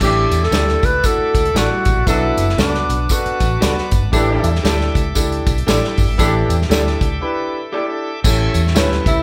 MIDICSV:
0, 0, Header, 1, 9, 480
1, 0, Start_track
1, 0, Tempo, 514139
1, 11, Time_signature, 4, 2, 24, 8
1, 8614, End_track
2, 0, Start_track
2, 0, Title_t, "Tonewheel organ"
2, 0, Program_c, 0, 16
2, 0, Note_on_c, 0, 69, 60
2, 2, Note_on_c, 0, 76, 59
2, 2, Note_on_c, 0, 86, 69
2, 7, Note_on_c, 0, 74, 60
2, 1910, Note_off_c, 0, 69, 0
2, 1911, Note_off_c, 0, 76, 0
2, 1913, Note_off_c, 0, 74, 0
2, 1931, Note_on_c, 0, 78, 59
2, 1932, Note_on_c, 0, 71, 65
2, 1932, Note_on_c, 0, 81, 62
2, 3836, Note_off_c, 0, 71, 0
2, 3836, Note_off_c, 0, 78, 0
2, 3836, Note_off_c, 0, 81, 0
2, 3857, Note_on_c, 0, 76, 61
2, 3860, Note_on_c, 0, 79, 65
2, 3862, Note_on_c, 0, 69, 66
2, 7652, Note_off_c, 0, 86, 0
2, 7657, Note_off_c, 0, 76, 0
2, 7658, Note_off_c, 0, 79, 0
2, 7659, Note_off_c, 0, 69, 0
2, 7691, Note_on_c, 0, 69, 67
2, 7691, Note_on_c, 0, 79, 67
2, 7693, Note_on_c, 0, 85, 80
2, 7695, Note_on_c, 0, 76, 62
2, 8614, Note_off_c, 0, 69, 0
2, 8614, Note_off_c, 0, 76, 0
2, 8614, Note_off_c, 0, 79, 0
2, 8614, Note_off_c, 0, 85, 0
2, 8614, End_track
3, 0, Start_track
3, 0, Title_t, "Clean electric guitar"
3, 0, Program_c, 1, 27
3, 486, Note_on_c, 1, 67, 72
3, 496, Note_on_c, 1, 69, 77
3, 500, Note_on_c, 1, 74, 95
3, 594, Note_off_c, 1, 67, 0
3, 600, Note_off_c, 1, 69, 0
3, 602, Note_off_c, 1, 74, 0
3, 1447, Note_on_c, 1, 67, 75
3, 1455, Note_on_c, 1, 69, 85
3, 1460, Note_on_c, 1, 74, 71
3, 1556, Note_off_c, 1, 67, 0
3, 1560, Note_off_c, 1, 69, 0
3, 1562, Note_off_c, 1, 74, 0
3, 2408, Note_on_c, 1, 66, 79
3, 2417, Note_on_c, 1, 69, 84
3, 2422, Note_on_c, 1, 74, 85
3, 2517, Note_off_c, 1, 66, 0
3, 2521, Note_off_c, 1, 69, 0
3, 2524, Note_off_c, 1, 74, 0
3, 3367, Note_on_c, 1, 66, 73
3, 3374, Note_on_c, 1, 69, 77
3, 3380, Note_on_c, 1, 74, 82
3, 3477, Note_off_c, 1, 66, 0
3, 3481, Note_off_c, 1, 69, 0
3, 3484, Note_off_c, 1, 74, 0
3, 4326, Note_on_c, 1, 67, 93
3, 4336, Note_on_c, 1, 69, 97
3, 4341, Note_on_c, 1, 74, 104
3, 4437, Note_off_c, 1, 67, 0
3, 4442, Note_off_c, 1, 69, 0
3, 4444, Note_off_c, 1, 74, 0
3, 5291, Note_on_c, 1, 67, 70
3, 5297, Note_on_c, 1, 69, 82
3, 5306, Note_on_c, 1, 74, 76
3, 5399, Note_off_c, 1, 67, 0
3, 5402, Note_off_c, 1, 69, 0
3, 5407, Note_off_c, 1, 74, 0
3, 6251, Note_on_c, 1, 67, 88
3, 6256, Note_on_c, 1, 69, 92
3, 6265, Note_on_c, 1, 74, 105
3, 6359, Note_off_c, 1, 67, 0
3, 6361, Note_off_c, 1, 69, 0
3, 6366, Note_off_c, 1, 74, 0
3, 7214, Note_on_c, 1, 67, 82
3, 7222, Note_on_c, 1, 69, 81
3, 7228, Note_on_c, 1, 74, 94
3, 7320, Note_off_c, 1, 67, 0
3, 7324, Note_off_c, 1, 69, 0
3, 7326, Note_off_c, 1, 74, 0
3, 8169, Note_on_c, 1, 64, 82
3, 8178, Note_on_c, 1, 67, 87
3, 8183, Note_on_c, 1, 73, 92
3, 8276, Note_off_c, 1, 64, 0
3, 8280, Note_off_c, 1, 67, 0
3, 8283, Note_off_c, 1, 73, 0
3, 8614, End_track
4, 0, Start_track
4, 0, Title_t, "Tenor saxophone"
4, 0, Program_c, 2, 66
4, 31, Note_on_c, 2, 67, 94
4, 410, Note_on_c, 2, 69, 88
4, 424, Note_off_c, 2, 67, 0
4, 792, Note_on_c, 2, 71, 96
4, 806, Note_off_c, 2, 69, 0
4, 988, Note_on_c, 2, 69, 94
4, 1002, Note_off_c, 2, 71, 0
4, 1467, Note_on_c, 2, 66, 95
4, 1481, Note_off_c, 2, 69, 0
4, 1938, Note_on_c, 2, 64, 91
4, 1952, Note_off_c, 2, 66, 0
4, 2417, Note_off_c, 2, 64, 0
4, 2431, Note_on_c, 2, 62, 86
4, 2911, Note_on_c, 2, 66, 77
4, 2925, Note_off_c, 2, 62, 0
4, 3667, Note_off_c, 2, 66, 0
4, 8466, Note_on_c, 2, 64, 88
4, 8614, Note_off_c, 2, 64, 0
4, 8614, End_track
5, 0, Start_track
5, 0, Title_t, "Grand piano"
5, 0, Program_c, 3, 0
5, 8, Note_on_c, 3, 57, 81
5, 15, Note_on_c, 3, 45, 50
5, 15, Note_on_c, 3, 62, 72
5, 20, Note_on_c, 3, 64, 75
5, 21, Note_on_c, 3, 67, 93
5, 339, Note_off_c, 3, 57, 0
5, 343, Note_off_c, 3, 62, 0
5, 345, Note_off_c, 3, 64, 0
5, 346, Note_off_c, 3, 67, 0
5, 486, Note_on_c, 3, 57, 67
5, 488, Note_on_c, 3, 62, 58
5, 493, Note_on_c, 3, 64, 64
5, 499, Note_on_c, 3, 67, 77
5, 740, Note_off_c, 3, 45, 0
5, 819, Note_off_c, 3, 57, 0
5, 820, Note_off_c, 3, 62, 0
5, 823, Note_off_c, 3, 64, 0
5, 826, Note_off_c, 3, 67, 0
5, 962, Note_on_c, 3, 57, 66
5, 971, Note_on_c, 3, 62, 61
5, 972, Note_on_c, 3, 64, 67
5, 980, Note_on_c, 3, 66, 75
5, 1298, Note_off_c, 3, 57, 0
5, 1302, Note_off_c, 3, 62, 0
5, 1303, Note_off_c, 3, 64, 0
5, 1306, Note_off_c, 3, 66, 0
5, 1442, Note_on_c, 3, 57, 66
5, 1448, Note_on_c, 3, 62, 56
5, 1451, Note_on_c, 3, 64, 63
5, 1458, Note_on_c, 3, 55, 67
5, 1778, Note_off_c, 3, 57, 0
5, 1781, Note_off_c, 3, 62, 0
5, 1783, Note_off_c, 3, 64, 0
5, 1786, Note_off_c, 3, 55, 0
5, 1921, Note_on_c, 3, 59, 78
5, 1928, Note_on_c, 3, 62, 72
5, 1932, Note_on_c, 3, 47, 54
5, 1934, Note_on_c, 3, 66, 77
5, 1938, Note_on_c, 3, 69, 83
5, 2258, Note_off_c, 3, 59, 0
5, 2261, Note_off_c, 3, 62, 0
5, 2264, Note_off_c, 3, 66, 0
5, 2266, Note_off_c, 3, 69, 0
5, 2405, Note_on_c, 3, 59, 68
5, 2412, Note_on_c, 3, 62, 59
5, 2413, Note_on_c, 3, 66, 65
5, 2422, Note_on_c, 3, 71, 74
5, 2660, Note_off_c, 3, 47, 0
5, 2740, Note_off_c, 3, 59, 0
5, 2744, Note_off_c, 3, 62, 0
5, 2744, Note_off_c, 3, 66, 0
5, 2749, Note_off_c, 3, 71, 0
5, 2885, Note_on_c, 3, 59, 67
5, 2895, Note_on_c, 3, 62, 64
5, 2898, Note_on_c, 3, 66, 60
5, 2902, Note_on_c, 3, 69, 74
5, 3220, Note_off_c, 3, 59, 0
5, 3225, Note_off_c, 3, 62, 0
5, 3227, Note_off_c, 3, 66, 0
5, 3229, Note_off_c, 3, 69, 0
5, 3368, Note_on_c, 3, 59, 64
5, 3371, Note_on_c, 3, 62, 56
5, 3376, Note_on_c, 3, 66, 62
5, 3381, Note_on_c, 3, 71, 78
5, 3702, Note_off_c, 3, 59, 0
5, 3703, Note_off_c, 3, 62, 0
5, 3706, Note_off_c, 3, 66, 0
5, 3709, Note_off_c, 3, 71, 0
5, 3845, Note_on_c, 3, 62, 106
5, 3850, Note_on_c, 3, 64, 87
5, 3853, Note_on_c, 3, 45, 65
5, 3853, Note_on_c, 3, 67, 92
5, 3860, Note_on_c, 3, 69, 114
5, 4181, Note_off_c, 3, 62, 0
5, 4183, Note_off_c, 3, 64, 0
5, 4184, Note_off_c, 3, 67, 0
5, 4188, Note_off_c, 3, 69, 0
5, 4327, Note_on_c, 3, 62, 85
5, 4331, Note_on_c, 3, 64, 78
5, 4337, Note_on_c, 3, 67, 76
5, 4342, Note_on_c, 3, 69, 86
5, 4581, Note_off_c, 3, 45, 0
5, 4662, Note_off_c, 3, 62, 0
5, 4664, Note_off_c, 3, 64, 0
5, 4666, Note_off_c, 3, 67, 0
5, 4669, Note_off_c, 3, 69, 0
5, 4805, Note_on_c, 3, 62, 86
5, 4809, Note_on_c, 3, 64, 80
5, 4816, Note_on_c, 3, 67, 76
5, 4819, Note_on_c, 3, 69, 99
5, 5140, Note_off_c, 3, 62, 0
5, 5142, Note_off_c, 3, 64, 0
5, 5146, Note_off_c, 3, 67, 0
5, 5148, Note_off_c, 3, 69, 0
5, 5289, Note_on_c, 3, 62, 83
5, 5294, Note_on_c, 3, 64, 75
5, 5299, Note_on_c, 3, 67, 72
5, 5303, Note_on_c, 3, 69, 85
5, 5623, Note_off_c, 3, 62, 0
5, 5625, Note_off_c, 3, 64, 0
5, 5627, Note_off_c, 3, 67, 0
5, 5629, Note_off_c, 3, 69, 0
5, 5769, Note_on_c, 3, 62, 101
5, 5775, Note_on_c, 3, 64, 99
5, 5776, Note_on_c, 3, 45, 69
5, 5780, Note_on_c, 3, 67, 90
5, 5786, Note_on_c, 3, 69, 113
5, 6102, Note_off_c, 3, 62, 0
5, 6105, Note_off_c, 3, 64, 0
5, 6108, Note_off_c, 3, 67, 0
5, 6111, Note_off_c, 3, 69, 0
5, 6251, Note_on_c, 3, 62, 82
5, 6255, Note_on_c, 3, 64, 75
5, 6262, Note_on_c, 3, 67, 76
5, 6266, Note_on_c, 3, 69, 96
5, 6501, Note_off_c, 3, 45, 0
5, 6583, Note_off_c, 3, 62, 0
5, 6585, Note_off_c, 3, 64, 0
5, 6588, Note_off_c, 3, 67, 0
5, 6590, Note_off_c, 3, 69, 0
5, 6731, Note_on_c, 3, 62, 82
5, 6736, Note_on_c, 3, 64, 78
5, 6743, Note_on_c, 3, 67, 78
5, 6744, Note_on_c, 3, 71, 91
5, 7062, Note_off_c, 3, 62, 0
5, 7065, Note_off_c, 3, 64, 0
5, 7068, Note_off_c, 3, 67, 0
5, 7069, Note_off_c, 3, 71, 0
5, 7207, Note_on_c, 3, 62, 80
5, 7214, Note_on_c, 3, 64, 71
5, 7218, Note_on_c, 3, 67, 70
5, 7223, Note_on_c, 3, 69, 88
5, 7540, Note_off_c, 3, 62, 0
5, 7543, Note_off_c, 3, 64, 0
5, 7545, Note_off_c, 3, 67, 0
5, 7548, Note_off_c, 3, 69, 0
5, 7693, Note_on_c, 3, 61, 84
5, 7700, Note_on_c, 3, 45, 67
5, 7700, Note_on_c, 3, 64, 77
5, 7701, Note_on_c, 3, 67, 70
5, 7708, Note_on_c, 3, 69, 88
5, 8022, Note_off_c, 3, 61, 0
5, 8026, Note_off_c, 3, 64, 0
5, 8026, Note_off_c, 3, 67, 0
5, 8030, Note_off_c, 3, 69, 0
5, 8165, Note_on_c, 3, 61, 80
5, 8170, Note_on_c, 3, 64, 79
5, 8174, Note_on_c, 3, 67, 79
5, 8179, Note_on_c, 3, 71, 91
5, 8421, Note_off_c, 3, 45, 0
5, 8498, Note_off_c, 3, 61, 0
5, 8500, Note_off_c, 3, 64, 0
5, 8502, Note_off_c, 3, 67, 0
5, 8504, Note_off_c, 3, 71, 0
5, 8614, End_track
6, 0, Start_track
6, 0, Title_t, "Horn section"
6, 0, Program_c, 4, 61
6, 11, Note_on_c, 4, 52, 76
6, 11, Note_on_c, 4, 67, 90
6, 15, Note_on_c, 4, 62, 83
6, 374, Note_off_c, 4, 52, 0
6, 374, Note_off_c, 4, 67, 0
6, 376, Note_off_c, 4, 62, 0
6, 1932, Note_on_c, 4, 69, 93
6, 1934, Note_on_c, 4, 54, 84
6, 1938, Note_on_c, 4, 62, 83
6, 2296, Note_off_c, 4, 69, 0
6, 2297, Note_off_c, 4, 54, 0
6, 2299, Note_off_c, 4, 62, 0
6, 3859, Note_on_c, 4, 62, 90
6, 3862, Note_on_c, 4, 67, 93
6, 3864, Note_on_c, 4, 52, 89
6, 4221, Note_off_c, 4, 62, 0
6, 4222, Note_off_c, 4, 67, 0
6, 4223, Note_off_c, 4, 52, 0
6, 5770, Note_on_c, 4, 52, 89
6, 5771, Note_on_c, 4, 67, 94
6, 5772, Note_on_c, 4, 62, 87
6, 6136, Note_off_c, 4, 52, 0
6, 6136, Note_off_c, 4, 62, 0
6, 6136, Note_off_c, 4, 67, 0
6, 8614, End_track
7, 0, Start_track
7, 0, Title_t, "Fingered electric bass"
7, 0, Program_c, 5, 33
7, 8, Note_on_c, 5, 33, 107
7, 227, Note_off_c, 5, 33, 0
7, 287, Note_on_c, 5, 40, 74
7, 441, Note_off_c, 5, 40, 0
7, 478, Note_on_c, 5, 38, 87
7, 701, Note_off_c, 5, 38, 0
7, 778, Note_on_c, 5, 37, 81
7, 929, Note_off_c, 5, 37, 0
7, 1259, Note_on_c, 5, 37, 81
7, 1409, Note_off_c, 5, 37, 0
7, 1443, Note_on_c, 5, 33, 86
7, 1556, Note_off_c, 5, 33, 0
7, 1738, Note_on_c, 5, 33, 86
7, 1814, Note_off_c, 5, 33, 0
7, 1827, Note_on_c, 5, 34, 74
7, 1906, Note_off_c, 5, 34, 0
7, 1931, Note_on_c, 5, 35, 97
7, 2150, Note_off_c, 5, 35, 0
7, 2213, Note_on_c, 5, 30, 85
7, 2366, Note_off_c, 5, 30, 0
7, 2411, Note_on_c, 5, 37, 86
7, 2630, Note_off_c, 5, 37, 0
7, 2701, Note_on_c, 5, 35, 85
7, 2852, Note_off_c, 5, 35, 0
7, 3178, Note_on_c, 5, 33, 84
7, 3330, Note_off_c, 5, 33, 0
7, 3383, Note_on_c, 5, 37, 82
7, 3490, Note_off_c, 5, 37, 0
7, 3661, Note_on_c, 5, 31, 97
7, 3736, Note_off_c, 5, 31, 0
7, 3758, Note_on_c, 5, 32, 77
7, 3834, Note_off_c, 5, 32, 0
7, 3855, Note_on_c, 5, 33, 97
7, 4073, Note_off_c, 5, 33, 0
7, 4138, Note_on_c, 5, 40, 75
7, 4290, Note_off_c, 5, 40, 0
7, 4336, Note_on_c, 5, 38, 83
7, 4554, Note_off_c, 5, 38, 0
7, 4624, Note_on_c, 5, 37, 89
7, 4774, Note_off_c, 5, 37, 0
7, 4814, Note_on_c, 5, 37, 103
7, 5033, Note_off_c, 5, 37, 0
7, 5104, Note_on_c, 5, 35, 81
7, 5254, Note_off_c, 5, 35, 0
7, 5294, Note_on_c, 5, 33, 104
7, 5404, Note_off_c, 5, 33, 0
7, 5585, Note_on_c, 5, 31, 91
7, 5659, Note_off_c, 5, 31, 0
7, 5677, Note_on_c, 5, 32, 81
7, 5753, Note_off_c, 5, 32, 0
7, 5779, Note_on_c, 5, 33, 111
7, 5995, Note_off_c, 5, 33, 0
7, 6058, Note_on_c, 5, 40, 82
7, 6210, Note_off_c, 5, 40, 0
7, 6255, Note_on_c, 5, 38, 85
7, 6473, Note_off_c, 5, 38, 0
7, 6546, Note_on_c, 5, 37, 80
7, 6695, Note_off_c, 5, 37, 0
7, 7697, Note_on_c, 5, 33, 97
7, 7913, Note_off_c, 5, 33, 0
7, 7977, Note_on_c, 5, 40, 87
7, 8173, Note_off_c, 5, 40, 0
7, 8173, Note_on_c, 5, 38, 86
7, 8390, Note_off_c, 5, 38, 0
7, 8458, Note_on_c, 5, 37, 87
7, 8608, Note_off_c, 5, 37, 0
7, 8614, End_track
8, 0, Start_track
8, 0, Title_t, "Muted fingered electric bass strokes"
8, 1103, Note_on_c, 9, 29, 45
8, 1196, Note_off_c, 9, 29, 0
8, 3041, Note_on_c, 9, 29, 46
8, 3135, Note_off_c, 9, 29, 0
8, 8614, End_track
9, 0, Start_track
9, 0, Title_t, "Drums"
9, 7, Note_on_c, 9, 49, 89
9, 9, Note_on_c, 9, 36, 96
9, 16, Note_on_c, 9, 54, 79
9, 101, Note_off_c, 9, 49, 0
9, 102, Note_off_c, 9, 36, 0
9, 109, Note_off_c, 9, 54, 0
9, 292, Note_on_c, 9, 54, 59
9, 295, Note_on_c, 9, 42, 63
9, 386, Note_off_c, 9, 54, 0
9, 388, Note_off_c, 9, 42, 0
9, 404, Note_on_c, 9, 38, 34
9, 487, Note_on_c, 9, 54, 81
9, 491, Note_on_c, 9, 42, 74
9, 497, Note_off_c, 9, 38, 0
9, 497, Note_on_c, 9, 38, 106
9, 580, Note_off_c, 9, 54, 0
9, 584, Note_off_c, 9, 42, 0
9, 590, Note_off_c, 9, 38, 0
9, 640, Note_on_c, 9, 38, 36
9, 733, Note_off_c, 9, 38, 0
9, 773, Note_on_c, 9, 54, 46
9, 777, Note_on_c, 9, 36, 96
9, 785, Note_on_c, 9, 42, 72
9, 866, Note_off_c, 9, 54, 0
9, 870, Note_off_c, 9, 36, 0
9, 879, Note_off_c, 9, 42, 0
9, 967, Note_on_c, 9, 54, 88
9, 971, Note_on_c, 9, 36, 87
9, 978, Note_on_c, 9, 42, 88
9, 1061, Note_off_c, 9, 54, 0
9, 1064, Note_off_c, 9, 36, 0
9, 1071, Note_off_c, 9, 42, 0
9, 1257, Note_on_c, 9, 36, 93
9, 1258, Note_on_c, 9, 42, 81
9, 1261, Note_on_c, 9, 54, 58
9, 1350, Note_off_c, 9, 36, 0
9, 1351, Note_off_c, 9, 42, 0
9, 1354, Note_off_c, 9, 54, 0
9, 1357, Note_on_c, 9, 42, 45
9, 1451, Note_off_c, 9, 42, 0
9, 1457, Note_on_c, 9, 42, 94
9, 1458, Note_on_c, 9, 38, 99
9, 1461, Note_on_c, 9, 54, 89
9, 1550, Note_off_c, 9, 42, 0
9, 1552, Note_off_c, 9, 38, 0
9, 1554, Note_off_c, 9, 54, 0
9, 1730, Note_on_c, 9, 42, 72
9, 1736, Note_on_c, 9, 36, 91
9, 1739, Note_on_c, 9, 54, 59
9, 1823, Note_off_c, 9, 42, 0
9, 1830, Note_off_c, 9, 36, 0
9, 1833, Note_off_c, 9, 54, 0
9, 1931, Note_on_c, 9, 36, 97
9, 1931, Note_on_c, 9, 42, 84
9, 1940, Note_on_c, 9, 54, 85
9, 2024, Note_off_c, 9, 36, 0
9, 2025, Note_off_c, 9, 42, 0
9, 2033, Note_off_c, 9, 54, 0
9, 2216, Note_on_c, 9, 54, 57
9, 2219, Note_on_c, 9, 42, 64
9, 2310, Note_off_c, 9, 54, 0
9, 2313, Note_off_c, 9, 42, 0
9, 2328, Note_on_c, 9, 38, 35
9, 2412, Note_on_c, 9, 42, 72
9, 2418, Note_off_c, 9, 38, 0
9, 2418, Note_on_c, 9, 38, 104
9, 2422, Note_on_c, 9, 54, 80
9, 2506, Note_off_c, 9, 42, 0
9, 2512, Note_off_c, 9, 38, 0
9, 2515, Note_off_c, 9, 54, 0
9, 2560, Note_on_c, 9, 38, 37
9, 2654, Note_off_c, 9, 38, 0
9, 2701, Note_on_c, 9, 54, 45
9, 2707, Note_on_c, 9, 42, 78
9, 2794, Note_off_c, 9, 54, 0
9, 2801, Note_off_c, 9, 42, 0
9, 2887, Note_on_c, 9, 54, 95
9, 2894, Note_on_c, 9, 36, 85
9, 2902, Note_on_c, 9, 42, 95
9, 2981, Note_off_c, 9, 54, 0
9, 2987, Note_off_c, 9, 36, 0
9, 2995, Note_off_c, 9, 42, 0
9, 3041, Note_on_c, 9, 42, 46
9, 3135, Note_off_c, 9, 42, 0
9, 3177, Note_on_c, 9, 42, 77
9, 3179, Note_on_c, 9, 36, 90
9, 3184, Note_on_c, 9, 54, 58
9, 3271, Note_off_c, 9, 42, 0
9, 3273, Note_off_c, 9, 36, 0
9, 3277, Note_off_c, 9, 54, 0
9, 3380, Note_on_c, 9, 42, 96
9, 3381, Note_on_c, 9, 38, 103
9, 3381, Note_on_c, 9, 54, 96
9, 3474, Note_off_c, 9, 42, 0
9, 3474, Note_off_c, 9, 54, 0
9, 3475, Note_off_c, 9, 38, 0
9, 3528, Note_on_c, 9, 38, 31
9, 3621, Note_off_c, 9, 38, 0
9, 3654, Note_on_c, 9, 42, 66
9, 3660, Note_on_c, 9, 36, 91
9, 3665, Note_on_c, 9, 54, 56
9, 3747, Note_off_c, 9, 42, 0
9, 3753, Note_off_c, 9, 36, 0
9, 3758, Note_off_c, 9, 54, 0
9, 3855, Note_on_c, 9, 36, 93
9, 3858, Note_on_c, 9, 42, 83
9, 3860, Note_on_c, 9, 54, 81
9, 3949, Note_off_c, 9, 36, 0
9, 3952, Note_off_c, 9, 42, 0
9, 3954, Note_off_c, 9, 54, 0
9, 4141, Note_on_c, 9, 54, 59
9, 4145, Note_on_c, 9, 42, 60
9, 4234, Note_off_c, 9, 54, 0
9, 4238, Note_off_c, 9, 42, 0
9, 4252, Note_on_c, 9, 38, 35
9, 4340, Note_on_c, 9, 42, 75
9, 4346, Note_off_c, 9, 38, 0
9, 4346, Note_on_c, 9, 38, 110
9, 4346, Note_on_c, 9, 54, 80
9, 4433, Note_off_c, 9, 42, 0
9, 4439, Note_off_c, 9, 38, 0
9, 4439, Note_off_c, 9, 54, 0
9, 4488, Note_on_c, 9, 38, 38
9, 4581, Note_off_c, 9, 38, 0
9, 4624, Note_on_c, 9, 36, 94
9, 4624, Note_on_c, 9, 54, 42
9, 4636, Note_on_c, 9, 42, 73
9, 4717, Note_off_c, 9, 36, 0
9, 4717, Note_off_c, 9, 54, 0
9, 4729, Note_off_c, 9, 42, 0
9, 4811, Note_on_c, 9, 54, 97
9, 4817, Note_on_c, 9, 36, 83
9, 4824, Note_on_c, 9, 42, 90
9, 4904, Note_off_c, 9, 54, 0
9, 4910, Note_off_c, 9, 36, 0
9, 4918, Note_off_c, 9, 42, 0
9, 4969, Note_on_c, 9, 42, 47
9, 5063, Note_off_c, 9, 42, 0
9, 5102, Note_on_c, 9, 54, 59
9, 5103, Note_on_c, 9, 42, 82
9, 5104, Note_on_c, 9, 36, 97
9, 5195, Note_off_c, 9, 54, 0
9, 5197, Note_off_c, 9, 36, 0
9, 5197, Note_off_c, 9, 42, 0
9, 5210, Note_on_c, 9, 42, 53
9, 5303, Note_off_c, 9, 42, 0
9, 5303, Note_on_c, 9, 54, 93
9, 5308, Note_on_c, 9, 42, 88
9, 5310, Note_on_c, 9, 38, 99
9, 5397, Note_off_c, 9, 54, 0
9, 5402, Note_off_c, 9, 42, 0
9, 5403, Note_off_c, 9, 38, 0
9, 5456, Note_on_c, 9, 38, 33
9, 5549, Note_off_c, 9, 38, 0
9, 5578, Note_on_c, 9, 46, 52
9, 5584, Note_on_c, 9, 36, 90
9, 5590, Note_on_c, 9, 54, 56
9, 5672, Note_off_c, 9, 46, 0
9, 5678, Note_off_c, 9, 36, 0
9, 5683, Note_off_c, 9, 54, 0
9, 5780, Note_on_c, 9, 36, 97
9, 5781, Note_on_c, 9, 42, 83
9, 5782, Note_on_c, 9, 54, 86
9, 5873, Note_off_c, 9, 36, 0
9, 5875, Note_off_c, 9, 42, 0
9, 5876, Note_off_c, 9, 54, 0
9, 6069, Note_on_c, 9, 54, 62
9, 6070, Note_on_c, 9, 42, 65
9, 6162, Note_off_c, 9, 54, 0
9, 6164, Note_off_c, 9, 42, 0
9, 6177, Note_on_c, 9, 38, 38
9, 6265, Note_on_c, 9, 42, 79
9, 6269, Note_on_c, 9, 54, 87
9, 6271, Note_off_c, 9, 38, 0
9, 6271, Note_on_c, 9, 38, 111
9, 6358, Note_off_c, 9, 42, 0
9, 6363, Note_off_c, 9, 54, 0
9, 6364, Note_off_c, 9, 38, 0
9, 6413, Note_on_c, 9, 38, 36
9, 6506, Note_off_c, 9, 38, 0
9, 6544, Note_on_c, 9, 54, 46
9, 6546, Note_on_c, 9, 36, 95
9, 6557, Note_on_c, 9, 42, 82
9, 6638, Note_off_c, 9, 54, 0
9, 6639, Note_off_c, 9, 36, 0
9, 6650, Note_off_c, 9, 42, 0
9, 7697, Note_on_c, 9, 36, 100
9, 7700, Note_on_c, 9, 49, 89
9, 7700, Note_on_c, 9, 54, 86
9, 7790, Note_off_c, 9, 36, 0
9, 7793, Note_off_c, 9, 49, 0
9, 7793, Note_off_c, 9, 54, 0
9, 7975, Note_on_c, 9, 54, 57
9, 7982, Note_on_c, 9, 42, 66
9, 8069, Note_off_c, 9, 54, 0
9, 8076, Note_off_c, 9, 42, 0
9, 8095, Note_on_c, 9, 38, 40
9, 8175, Note_on_c, 9, 54, 88
9, 8178, Note_on_c, 9, 42, 79
9, 8184, Note_off_c, 9, 38, 0
9, 8184, Note_on_c, 9, 38, 110
9, 8268, Note_off_c, 9, 54, 0
9, 8272, Note_off_c, 9, 42, 0
9, 8278, Note_off_c, 9, 38, 0
9, 8325, Note_on_c, 9, 38, 37
9, 8418, Note_off_c, 9, 38, 0
9, 8459, Note_on_c, 9, 36, 98
9, 8461, Note_on_c, 9, 54, 48
9, 8466, Note_on_c, 9, 42, 80
9, 8553, Note_off_c, 9, 36, 0
9, 8554, Note_off_c, 9, 54, 0
9, 8559, Note_off_c, 9, 42, 0
9, 8614, End_track
0, 0, End_of_file